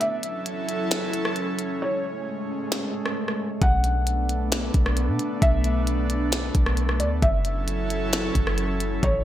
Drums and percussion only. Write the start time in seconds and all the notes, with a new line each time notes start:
0.01 closed hi-hat
0.23 closed hi-hat
0.46 closed hi-hat
0.69 closed hi-hat
0.91 snare, closed hi-hat
1.14 closed hi-hat
1.25 cross-stick
1.36 closed hi-hat
1.59 closed hi-hat
2.72 snare
3.06 cross-stick
3.28 cross-stick
3.62 kick, closed hi-hat
3.84 closed hi-hat
4.07 closed hi-hat
4.29 closed hi-hat
4.52 snare, closed hi-hat
4.74 kick, closed hi-hat
4.86 cross-stick
4.97 closed hi-hat
5.19 closed hi-hat
5.42 kick, closed hi-hat
5.64 closed hi-hat
5.87 closed hi-hat
6.10 closed hi-hat
6.32 snare, closed hi-hat
6.55 kick, closed hi-hat
6.66 cross-stick
6.77 closed hi-hat
6.89 cross-stick
7.00 closed hi-hat
7.22 kick, closed hi-hat
7.45 closed hi-hat
7.68 closed hi-hat
7.90 closed hi-hat
8.13 snare, closed hi-hat
8.35 kick, closed hi-hat
8.47 cross-stick
8.58 closed hi-hat
8.80 closed hi-hat
9.03 kick, closed hi-hat